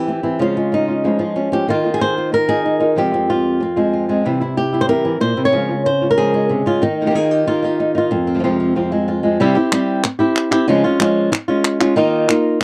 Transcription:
Already playing: E3 G4
0.07 C4, muted nylon-string guitar stroke
0.23 E3 G3 C4 E4
0.39 C#3 F3 G#3 C#4 F4
0.55 G#3 C#4 F4
0.72 D#4, muted nylon-string guitar stroke
0.88 G#3 C#4 F4
1.04 C#3 F3 G#3 C#4 F4
1.19 F3 G#3 C#4 F4
1.36 C#4, muted nylon-string guitar stroke
1.52 F3 G#3 C#4 F4 G4
1.67 D#3 A#3 D#4 F4 A#4
1.84 D#4 F4 A#4
1.94 G#4
2.00 A#3 D#4 F4 A#4 C5
2.18 F4
2.32 A#4, muted nylon-string guitar stroke
2.48 D#4 F4 G#4 A#4
2.66 D#4
2.80 D#4 F4 A#4
2.96 F2 C3 F3 G#3 C4 F4 G4
3.12 F3 G#3 C4 F4
3.28 F3 G#3 C4 F4
3.60 C4, muted nylon-string guitar stroke
3.76 F3 G#3 C4 F4
3.93 F4
4.09 F3 G#3 C4 F4
4.24 C3 E3 G3 C4 E4
4.40 G3 C4 E4
4.57 G4, muted nylon-string guitar stroke
4.73 G3 C4 E4
4.81 C5
4.89 C3 E3 G3 C4 E4 A#4
5.05 E3 G3 C4 E4
5.21 A#2 C5, muted nylon-string guitar stroke
5.37 C3 G3 C4 E4
5.45 C#5
5.53 C#3 F3 G#3 C#4 F4
5.69 G#3 C#4 F4
5.85 C5, muted nylon-string guitar stroke
6.01 G#3 C#4 F4
6.11 A#4
6.17 C#3 F3 G#3 C#4 F4 G#4
6.34 G#3 C#4 F4
6.49 C3, muted nylon-string guitar stroke
6.66 C#3 G#3 C#4 F4
6.82 D#3 D#4, muted nylon-string guitar stroke
7.01 A#3 D#4 F4 A#4
7.06 A#3 D#4 F4 G4 A#4
7.10 A#3 D#4 F4 A#4
7.14 D#3 A#3 D#4 F4 G#4 A#4
7.31 G4
7.46 D#3 A#3 D#4 F4 A#4
7.62 D#4 F4 G4 A#4
7.79 D#4, muted nylon-string guitar stroke
7.95 D#4 F4 A#4
8.11 F2, muted nylon-string guitar stroke
8.27 C4
8.34 C3 F3 G#3 C4 F4
8.39 C3 F3 G#3 C4 F4
8.44 F2 C3 F3 G#3 C4 F4
8.60 C4
8.75 F2 C3 F3 G#3 C4 F4
8.91 F3 G#3 C4 F4
9.08 F4, muted nylon-string guitar stroke
9.23 F3 G#3 C4 F4
9.40 C3 G3 C4 E4 G4
9.55 C4 E4 G4
9.72 G3 C4 E4 G4, clap
10.04 muted nylon-string guitar stroke, clap
10.19 C4 E4 G4
10.36 clap
10.51 C4 E4 G4, clap
10.68 C#3 F3 G#3 C#4 F4
10.84 G#3 C#4 F4
11.00 F3 G#3 C#4 F4, clap
11.32 muted nylon-string guitar stroke, clap
11.48 G#3 C#4 F4
11.64 clap
11.80 G#3 C#4 F4, clap
11.96 D#3 A#3 D#4 F4
12.28 A#3 D#4 F4, clap
12.60 muted nylon-string guitar stroke

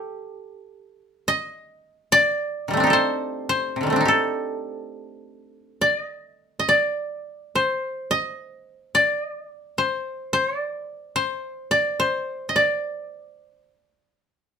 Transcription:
Already playing: G4 A4
1.28 D#5
2.12 D5
2.68 D#3 G3
2.73 A3 C4
2.80 D4 D#4
2.87 G4 A4
2.93 C5
3.49 C5
3.76 C3
3.81 D3 D#3
3.87 G3 A3
3.92 C4 D4
4.01 D#4
4.05 G4 A4
5.81 D5
5.99 D#5
6.59 D#5
6.69 D5
7.55 C5
8.11 D#5
8.95 D5
9.78 C5
10.33 C5
10.57 D5
11.16 C5
11.71 D5
12.00 C5
12.49 D#5
12.56 D5

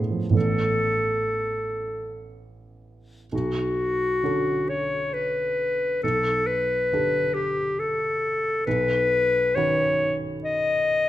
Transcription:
Already playing: D2 A2 B3 D4 F4 A4
0.10 F3
0.30 A1 E3 B3 C#4
0.34 A4
3.32 B1 F#4
4.23 D3 C#4 F#4 A4
4.69 C#5
5.14 B4
6.03 B1 A4
6.47 B4
6.93 D3 D4 G4 A4
7.34 G4
7.80 A4
8.66 B1 B4
9.55 D#3 C#4 F#4 B4 C#5
10.44 D#5

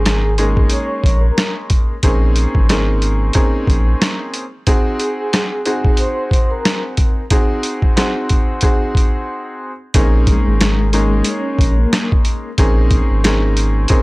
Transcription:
Already playing: G#1 A#3 C4 C#4 D#4 G#4 G#5
0.06 cross-stick, snare, closed hi-hat
0.38 G#3 A#3 C#4 D#4 G#4, closed hi-hat
0.57 kick
0.70 C#5 C#6, closed hi-hat
1.04 A#1, kick, closed hi-hat
1.21 A#4 A#5
1.38 cross-stick, snare, closed hi-hat
1.70 kick, closed hi-hat
2.03 A#1 A#3 C4 C#4 D#4 G#4, kick, closed hi-hat
2.36 closed hi-hat
2.55 G#1, kick
2.69 A#3 C4 C#4 D#4 G#4, cross-stick, snare, closed hi-hat
3.02 closed hi-hat
3.33 A#3 C4 C#4 D#4 G#4, kick, closed hi-hat
3.67 A#1, kick, closed hi-hat
4.02 cross-stick, snare, closed hi-hat
4.34 closed hi-hat
4.67 C4 D#4 F#4 G#4, kick, closed hi-hat
4.99 G#4 G#5, closed hi-hat
5.33 cross-stick, snare, closed hi-hat
5.66 C4 D#4 F#4 G#4, closed hi-hat
5.85 kick
5.97 C5 C6, closed hi-hat
6.31 kick, closed hi-hat
6.50 A#4 A#5
6.65 cross-stick, snare, closed hi-hat
6.97 kick, closed hi-hat
7.30 C4 D#4 F#4 G#4, kick, closed hi-hat
7.63 closed hi-hat
7.82 kick
7.96 C4 D#4 F#4 G#4, cross-stick, snare, closed hi-hat
8.29 kick, closed hi-hat
8.61 C4 D#4 F#4 G#4, kick, closed hi-hat
8.95 kick, closed hi-hat
9.94 A#1 A#3 C4 C#4 D#4 G#4, kick, closed hi-hat
10.27 G#3 G#4, kick, closed hi-hat
10.47 G#1
10.61 cross-stick, snare, closed hi-hat
10.93 G#3 A#3 C#4 D#4 G#4, closed hi-hat
11.24 C#4 C#5, closed hi-hat
11.59 A#1, kick, closed hi-hat
11.76 A#3 A#4
11.93 cross-stick, snare, closed hi-hat
12.12 kick
12.25 closed hi-hat
12.58 A#1 A#3 C4 C#4 D#4 G#4, kick, closed hi-hat
12.91 kick, closed hi-hat
13.11 G#1
13.24 A#3 C4 C#4 D#4 G#4, cross-stick, snare, closed hi-hat
13.57 closed hi-hat
13.88 A#3 C4 C#4 D#4 G#4, kick, closed hi-hat

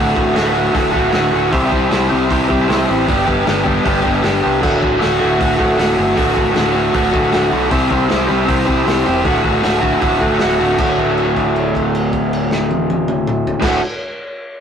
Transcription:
Already playing: D1 D2 A2 D3 A3 F#4
0.15 D1 D3 A3 F#4, kick
0.34 D1 A2 D3 A3 F#4, snare, open hi-hat
0.53 D2 A2 D3 A3 F#4
0.72 D1 A2 D3 A3 F#4, kick, open hi-hat
0.92 D1 D2 A2 D3 A3 F#4, kick
1.11 D1 A2 D3 A3 F#4, snare, open hi-hat
1.31 D1 D3 A3 F#4
1.50 C2 C3 G3 C4 E4 G4 C5, kick, open hi-hat
1.71 C2 C4 E4 G4 C5, kick
1.89 C2 C4 E4 G4 C5, snare, open hi-hat
2.09 C2 C3 G3 C4 E4 G4 C5
2.29 C2 C4 E4 G4 C5, kick, open hi-hat
2.48 C2 C3 G3 C4 E4 G4 C5, kick
2.68 C2 C4 E4 G4 C5, snare, open hi-hat
2.87 A1 C4 E4 G4 C5
3.06 G1 G2 D3 G3 B3 D4 G4, kick, open hi-hat
3.26 G1 G3 B3 D4 G4, kick
3.45 G1 G3 B3 D4 G4, snare, open hi-hat
3.63 G2 D3 G3 B3 D4 G4, kick
3.84 G1 G3 B3 D4 G4, kick, open hi-hat
4.02 G1 G2 D3 G3 B3 D4 G4, kick
4.22 G1 G3 B3 D4 G4, snare, open hi-hat
4.41 G3 B3 D4 G4
4.45 C2
4.61 D1 D2 A2 D3 A3 F#4, kick, crash
4.79 D1 D3 A3 F#4, kick
4.98 A2 D3 A3 F#4
5.02 D1, snare, open hi-hat
5.19 D1 D2 A2 D3 A3 F#4
5.39 D1 A2 D3 A3 F#4, kick, open hi-hat
5.57 D1 D2 A2 D3 A3 F#4, kick
5.77 D1 A2 D3 A3 F#4, snare, open hi-hat
5.96 G1 D3 A3 F#4
6.15 D1 D2 A2 D3 A3 F#4, kick, open hi-hat
6.34 D1 D3 A3 F#4, kick
6.53 A2 D3 A3 F#4, snare, open hi-hat
6.57 D1
6.72 D2 A2 D3 A3 F#4
6.92 D1 A2 D3 A3 F#4, kick, open hi-hat
7.11 D1 D2 A2 D3 A3 F#4, kick
7.31 D1 A2 D3 A3 F#4, snare, open hi-hat
7.50 B1 D3 A3 F#4
7.70 C2 C3 G3 C4 E4 G4 C5, kick, open hi-hat
7.90 C2 C4 E4 G4 C5, kick
8.08 C2 C4 E4 G4 C5, snare, open hi-hat
8.27 C2 C3 G3 C4 E4 G4 C5
8.45 C2 C4 E4 G4 C5, kick, open hi-hat
8.65 C2 C3 G3 C4 E4 G4 C5, kick
8.83 C2 C4 E4 G4 C5
8.88 snare, open hi-hat
9.04 E1 C4 E4 G4 C5
9.23 D1 D2 A2 D3 A3 F#4, kick, open hi-hat
9.42 D1 D3 A3 F#4, kick
9.62 D1 A2 D3 A3 F#4, snare, open hi-hat
9.80 D2 A2 D3 A3 F#4, kick
10.00 D1 A2 D3 A3 F#4, kick, open hi-hat
10.19 D1 D2 A2 D3 A3 F#4, kick
10.39 D1 A2 D3 A3 F#4, snare, open hi-hat
10.59 D1 D3 A3 F#4
10.77 D1 D2 A2 D3 A3, kick, crash
10.82 F#4
10.98 kick, crash
11.18 crash
11.36 kick, crash
11.56 crash
11.75 kick, crash
11.95 crash
12.13 kick, crash
12.33 crash
12.51 snare
12.71 high tom
12.90 high tom
13.08 mid tom
13.27 mid tom
13.47 floor tom
13.60 D1 D2 A2 D3 A3, kick, snare, crash
13.64 F#4

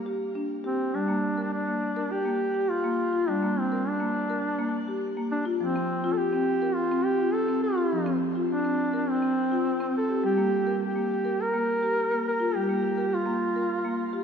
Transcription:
Already playing: G3
0.06 G4
0.35 D4
0.64 C4 G4
0.94 G3 D4
1.08 A#3
1.38 A#4
1.53 D4
1.67 A#3
1.96 A#4
2.11 G4
2.25 A#3
2.54 G4
2.70 F4
2.84 A#3
3.13 F4
3.28 G3 D4
3.42 A#3
3.59 C4
3.72 A#4
3.88 D4
4.00 A#3
4.30 A#4
4.59 A#3
4.88 G4
5.17 A#3
5.32 D4
5.45 F4
5.61 F3 C4
5.76 C4
6.04 F4
6.13 A4
6.17 G4
6.33 C4
6.62 A#4
6.75 F4
6.91 C4
7.05 G4
7.20 F4
7.33 A4
7.49 C4
7.63 F4
7.78 G4
7.92 F3
8.06 C4
8.35 F4
8.51 D4
8.65 C4
8.93 A#4
9.10 C4
9.22 C4
9.52 F4
9.80 C4
9.97 A4
10.09 G4
10.24 G3 G4
10.38 A#3
10.67 A#4
10.84 G4
10.96 A#3
11.25 A#4
11.41 A#4
11.54 A#3
11.83 G4
12.11 A#3
12.28 A#4
12.40 F4
12.55 G3 G4
12.69 A#3
12.98 A#4
13.14 F4
13.26 A#3
13.56 A#4
13.85 A#3
14.13 G4

